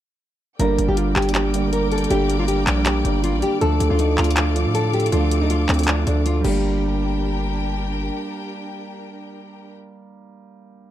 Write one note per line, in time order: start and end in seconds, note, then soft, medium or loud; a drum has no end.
0.59 0.78 G1 loud
0.59 0.77 D3 loud
0.59 0.77 G3 medium
0.59 0.78 A#3 medium
0.59 0.78 D4 loud
0.59 3.58 A#4 medium
0.59 0.87 A#4 loud
0.59 6.40 D5 medium
0.59 3.58 G5 medium
0.59 3.58 D6 medium
0.59 closed hi-hat medium
0.78 0.88 G1 loud
0.78 closed hi-hat medium
0.87 1.15 G1 loud
0.87 1.11 D3 medium
0.87 1.11 G3 medium
0.87 1.12 A#3 medium
0.87 1.12 D4 medium
0.87 0.95 G4 medium
0.97 1.11 F4 medium
0.97 closed hi-hat medium
1.16 2.07 G1 loud
1.16 1.30 G4 medium
1.16 clap loud
1.16 closed hi-hat soft
1.22 1.44 D3 medium
1.22 closed hi-hat medium
1.27 1.44 G3 medium
1.27 1.44 A#3 medium
1.27 1.45 D4 medium
1.27 closed hi-hat medium
1.35 1.70 G4 medium
1.35 clap loud
1.35 closed hi-hat medium
1.53 1.89 D3 medium
1.53 1.89 G3 medium
1.53 1.90 A#3 medium
1.53 1.90 D4 medium
1.53 closed hi-hat medium
1.73 1.87 A#4 medium
1.73 closed hi-hat medium
1.92 2.06 A4 medium
1.92 closed hi-hat soft
1.98 closed hi-hat medium
2.04 closed hi-hat medium
2.10 2.65 G1 loud
2.10 2.28 D3 loud
2.10 2.28 G3 medium
2.10 2.29 A#3 medium
2.10 2.29 D4 loud
2.10 2.38 G4 loud
2.10 closed hi-hat medium
2.30 closed hi-hat medium
2.38 2.62 D3 medium
2.38 2.62 G3 medium
2.38 2.63 A#3 medium
2.38 2.63 D4 medium
2.38 2.46 F4 medium
2.48 2.62 G4 medium
2.48 closed hi-hat medium
2.67 3.03 A#1 loud
2.67 2.81 D4 medium
2.67 clap loud
2.67 closed hi-hat medium
2.76 2.94 D3 medium
2.76 2.94 G3 medium
2.76 2.95 A#3 medium
2.76 2.95 D4 medium
2.86 3.21 G4 loud
2.86 clap loud
2.86 closed hi-hat medium
3.04 3.35 G1 loud
3.04 3.40 D3 medium
3.04 3.40 G3 medium
3.04 3.41 A#3 medium
3.04 3.41 D4 medium
3.04 closed hi-hat medium
3.24 3.38 F4 medium
3.24 closed hi-hat medium
3.34 3.42 A1 loud
3.42 3.57 G4 medium
3.42 closed hi-hat medium
3.60 3.79 D2 loud
3.60 3.79 D3 loud
3.60 3.79 F3 medium
3.60 3.79 A3 medium
3.60 3.79 D4 loud
3.60 3.88 A4 loud
3.60 6.42 A4 medium
3.60 6.42 F5 medium
3.60 6.42 D6 medium
3.60 closed hi-hat medium
3.80 3.90 D2 loud
3.80 closed hi-hat medium
3.90 4.17 D2 loud
3.90 4.13 D3 medium
3.90 4.14 F3 medium
3.90 4.14 A3 medium
3.90 4.14 D4 medium
3.90 3.97 F4 medium
3.99 4.13 D#4 medium
3.99 closed hi-hat medium
4.18 4.67 D2 loud
4.18 4.32 F4 medium
4.18 clap loud
4.18 closed hi-hat soft
4.24 4.45 D3 medium
4.24 4.46 F3 medium
4.24 closed hi-hat medium
4.29 4.46 A3 medium
4.29 4.46 D4 medium
4.29 closed hi-hat medium
4.37 4.72 F4 medium
4.37 clap loud
4.37 closed hi-hat medium
4.54 4.91 D3 medium
4.54 4.91 F3 medium
4.54 4.91 A3 medium
4.54 4.91 D4 medium
4.54 closed hi-hat medium
4.66 5.10 A2 loud
4.74 4.89 A4 medium
4.74 closed hi-hat medium
4.93 5.08 G4 medium
4.93 closed hi-hat soft
5.00 closed hi-hat medium
5.06 closed hi-hat medium
5.12 5.67 D2 loud
5.12 5.30 D3 loud
5.12 5.30 F3 loud
5.12 5.30 A3 medium
5.12 5.31 D4 loud
5.12 5.39 F4 loud
5.12 closed hi-hat medium
5.31 closed hi-hat medium
5.41 5.64 D3 medium
5.41 5.64 F3 medium
5.41 5.65 A3 medium
5.41 5.65 D4 medium
5.41 5.48 D#4 medium
5.50 5.64 F4 medium
5.50 closed hi-hat medium
5.69 6.05 D2 loud
5.69 5.83 C4 medium
5.69 clap loud
5.69 closed hi-hat soft
5.74 closed hi-hat medium
5.78 5.96 D3 medium
5.78 5.97 F3 medium
5.78 5.97 A3 medium
5.78 5.97 D4 medium
5.78 closed hi-hat medium
5.83 closed hi-hat medium
5.87 6.02 D4 medium
5.87 clap loud
5.87 closed hi-hat medium
6.06 6.43 D2 loud
6.06 6.42 D3 medium
6.06 6.42 F3 medium
6.06 6.43 A3 medium
6.06 6.21 D4 medium
6.06 6.43 D4 medium
6.06 closed hi-hat medium
6.26 6.44 F4 medium
6.26 closed hi-hat medium
6.41 8.10 G1 loud
6.41 9.70 G3 medium
6.41 9.74 A#3 medium
6.41 9.74 D4 medium
6.41 7.72 G4 medium
6.41 9.74 G4 medium
6.41 9.74 A#4 medium
6.41 9.74 G5 loud
6.41 crash medium
6.48 9.77 D4 medium